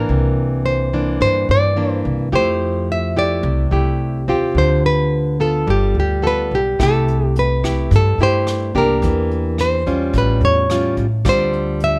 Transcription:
Already playing: E3 A#3 D4 A#4
0.09 C2 C3
0.66 C5
0.93 E3 A#3 D4
1.21 G2 C5
1.49 G2 D5
1.76 E3 A#3 D4
2.05 C2
2.32 F2 F3 A3 E4 G4 C5
2.92 E5
3.16 A3 E4 G4 D5
3.43 C2 C3
3.71 C2 A3 E4 G4
4.28 D#2 C4 F4 G4
4.55 D2 D3 C5
4.86 B4
5.40 B3 F4 A4
5.67 G1 G3 G4
5.95 D2
6.00 G4
6.22 B3 F4 A4
6.27 B4
6.51 B1 G4
6.79 C2 C3 A3 E4 G4 A4, kick, cross-stick, closed hi-hat
7.08 closed hi-hat
7.26 G4
7.36 B4, closed hi-hat
7.64 A3 E4 G4, kick, cross-stick, closed hi-hat
7.91 G2, kick, closed hi-hat
7.96 A4
8.18 G2 A3 E4 G4, closed hi-hat
8.23 C5
8.47 cross-stick, closed hi-hat
8.75 C2 A#3 D4 G4 A#4, kick, closed hi-hat
9.02 E2 E3, kick, closed hi-hat
9.31 closed hi-hat
9.58 C5, cross-stick, closed hi-hat
9.86 G3 C#4 F4, kick, closed hi-hat
10.13 A1 A2, kick, closed hi-hat
10.18 B4
10.41 E2, closed hi-hat
10.45 C#5
10.70 G3 C#4 F4, cross-stick, closed hi-hat
10.97 A1, kick, closed hi-hat
11.25 D2 D3 G3 C4 F4, kick, cross-stick, closed hi-hat
11.29 C5
11.53 closed hi-hat
11.80 E5, closed hi-hat

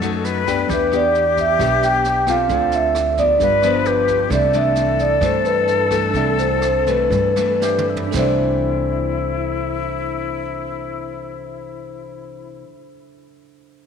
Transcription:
Already playing: F#2 D#4 A4 B4 F#5
0.02 F#3 A3 D#4, cross-stick, snare
0.24 B4, snare
0.47 B3 D4 G4, kick, snare
0.67 E2 E3 D4 G4 B4, kick, cross-stick, snare
0.73 B4 E5
0.92 B3 D4 G4 D5, snare
1.15 snare
1.37 E5, kick, snare
1.59 B1 B2 B3 D4 G4, kick, cross-stick, snare
1.82 G5, snare
2.04 snare
2.27 C4 F4 A4 F5, kick, cross-stick, snare
2.48 D2 D3 D4 A4 C5, kick, snare
2.54 F4
2.71 E5, snare
2.95 cross-stick, snare
3.17 F3 B3 D4 D5, kick, snare
3.38 G1 G2 D4 G4 B4, kick, snare
3.42 B4 F5
3.62 F3 B3 D4 C5, cross-stick, snare
3.85 G4 B4, snare
4.07 kick, snare
4.29 C2 C3 E3 A3 D4 A4 D5, kick, cross-stick, snare
4.33 C4 E5
4.53 E3 A3 D4 E5, snare
4.75 snare
4.98 D5, kick, snare
5.21 G2 E3 A3 D4 C5, kick, cross-stick, snare
5.44 B4, snare
5.67 snare
5.90 E3 A3 D4 A4, kick, cross-stick, snare
6.11 C2 C3 E3 A3 C4 D4 A4, kick, snare
6.15 D4 E5
6.38 C5, snare
6.62 C5, cross-stick, snare
6.86 E3 A3 D4 B4, kick, snare
7.10 G2, kick, snare
7.36 E3 A3 D4, cross-stick, snare
7.60 D4 G4 A4 C5 E5, snare
7.78 mid tom
7.90 E4
7.97 floor tom
8.07 D4 A4
8.13 C2 C3 E3 E4 C5, kick, snare
8.17 A3 D4 C5 E5

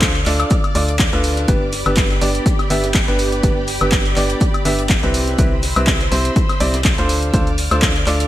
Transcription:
Already playing: D2 D4 F4 A4 C5 D5 D6 F6
0.02 kick, snare, clap, closed hi-hat, shaker
0.15 closed hi-hat
0.26 D2 D4 F4 A4 D5, clap, open hi-hat, shaker
0.40 closed hi-hat, high woodblock
0.50 kick, closed hi-hat, shaker
0.64 closed hi-hat, high woodblock
0.75 D2 D4 F4 A4 D5, snare, open hi-hat, shaker
0.88 closed hi-hat
0.99 kick, snare, clap, closed hi-hat, shaker
1.13 D2 D4 F4 A4 B4, closed hi-hat
1.24 open hi-hat, shaker
1.37 snare, closed hi-hat
1.48 G1 B3 D4 G4 B4 D5 B5, kick, closed hi-hat, shaker
1.72 snare, open hi-hat, shaker
1.86 G1 B3 D4 G4 B4, closed hi-hat, high woodblock
1.97 kick, snare, clap, closed hi-hat, shaker
2.10 snare, closed hi-hat
2.21 G1 B3 D4 G4 D5, open hi-hat, shaker
2.35 closed hi-hat
2.46 kick, closed hi-hat, shaker
2.59 snare, closed hi-hat, high woodblock
2.70 G1 B3 D4 G4 E5, open hi-hat, shaker
2.84 snare, closed hi-hat
2.94 kick, snare, clap, closed hi-hat, shaker
3.08 G1 B3 D4 G4 B4, closed hi-hat
3.19 open hi-hat, shaker
3.32 closed hi-hat
3.43 G1 B3 D4 G4 B4, kick, closed hi-hat, shaker
3.67 open hi-hat, shaker
3.81 G1 B3 D4 G4 B4, snare, high woodblock
3.92 kick, snare, clap, closed hi-hat, shaker
4.06 closed hi-hat
4.16 G1 B3 D4 G4 D5, clap, open hi-hat, shaker
4.30 closed hi-hat
4.41 kick, closed hi-hat, shaker
4.54 closed hi-hat, high woodblock
4.65 G1 B3 D4 G4 E5, snare, open hi-hat, shaker
4.79 closed hi-hat
4.89 kick, snare, clap, closed hi-hat, shaker
5.03 C2 C4 E4 G4 B4, closed hi-hat
5.14 C5 E6, open hi-hat, shaker
5.28 snare, closed hi-hat
5.38 C2 C4 E4 G4 B4, kick, closed hi-hat, shaker
5.63 snare, open hi-hat, shaker
5.76 C2 C4 E4 G4 B4, closed hi-hat, high woodblock
5.87 kick, snare, clap, closed hi-hat, shaker
6.00 snare, closed hi-hat
6.12 C2 C4 E4 G4 C5, open hi-hat, shaker
6.25 closed hi-hat
6.36 kick, closed hi-hat, shaker
6.49 snare, closed hi-hat, high woodblock
6.60 C2 C4 E4 G4 D5, open hi-hat, shaker
6.74 snare, closed hi-hat
6.84 kick, snare, clap, closed hi-hat, shaker
6.98 D2 D4 F4 A4 C5, closed hi-hat
7.09 D5 D6 F6, open hi-hat, shaker
7.23 closed hi-hat
7.34 D2 D4 F4 A4 C5, kick, closed hi-hat, shaker
7.47 closed hi-hat
7.58 open hi-hat, shaker
7.71 D2 D4 F4 A4 C5, snare, closed hi-hat, high woodblock
7.82 kick, snare, clap, closed hi-hat, shaker
7.96 closed hi-hat
8.07 D2 D4 F4 A4 D5, clap, open hi-hat, shaker
8.20 closed hi-hat

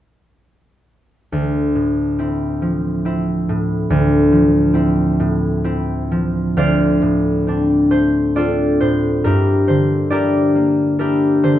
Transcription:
1.32 D2
1.75 A2
2.19 C4 E4
2.62 F3
3.05 C4 E4
3.49 A2
3.90 D2
4.32 F3
4.74 C4 E4
5.20 A2
5.64 C4 E4
6.12 F3
6.57 D2 C5 D5 F5
7.02 A2
7.47 C4 D4
7.91 A3 C5
8.36 C4 D4 F4 A4 D5
8.81 A2 C5
9.24 G2 E4 G4 A#4
9.68 D3 C5
10.10 D4 E4 G4 A#4 D5
10.55 A#3
10.99 D4 E4 G4 A#4
11.43 D3 C5

